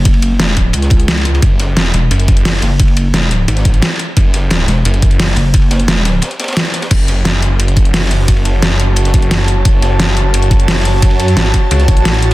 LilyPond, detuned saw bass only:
\new Staff \with { instrumentName = "Detuned saw bass" } { \clef bass \time 4/4 \key fis \minor \tempo 4 = 175 r1 | fis,,4. r8 fis,,4. r8 | r2 gis,,4 r4 | fis,,4. r8 fis,,4. r8 |
r1 | fis,,1 | fis,,1 | fis,,1 |
fis,4 gis,,8 r8 cis,8 a,,4. | }